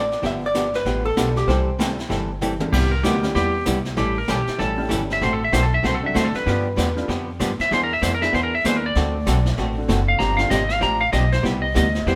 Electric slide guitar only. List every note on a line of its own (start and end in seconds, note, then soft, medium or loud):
2.73 2.91 G4 medium
2.91 3.04 A#4 medium
3.03 3.34 G4 medium
3.35 3.66 G4 loud
3.98 4.16 G4 loud
4.18 4.29 A#4 medium
4.30 4.60 G4 loud
4.59 4.90 A4 medium
5.13 5.23 E5 medium
5.23 5.33 C5 medium
5.33 5.43 A4 medium
5.44 5.54 E5 medium
5.53 5.63 C5 medium
5.63 5.73 A4 medium
5.74 5.84 E5 medium
5.85 5.95 C5 medium
5.95 6.05 A4 medium
6.06 6.16 E5 medium
6.16 6.26 C5 medium
6.25 6.36 A4 medium
6.36 7.27 B4 medium
7.61 7.71 E5 loud
7.73 7.83 C5 loud
7.83 7.93 A#4 medium
7.93 8.03 E5 medium
8.03 8.13 C5 medium
8.14 8.24 A#4 medium
8.22 8.33 E5 medium
8.35 8.43 C5 medium
8.43 8.54 A#4 medium
8.55 8.65 E5 medium
8.66 8.75 C5 loud
8.77 8.86 A#4 medium
8.86 9.76 D5 loud
10.08 10.20 F5 loud
10.19 10.38 A#5 medium
10.37 10.50 F5 medium
10.50 10.69 D#5 loud
10.69 10.81 F5 medium
10.83 11.01 A#5 loud
11.01 11.12 F5 loud
11.13 11.31 D#5 medium
11.33 11.44 C5 loud
11.62 11.74 D#5 medium
11.77 12.06 D#5 loud
12.08 12.15 C5 medium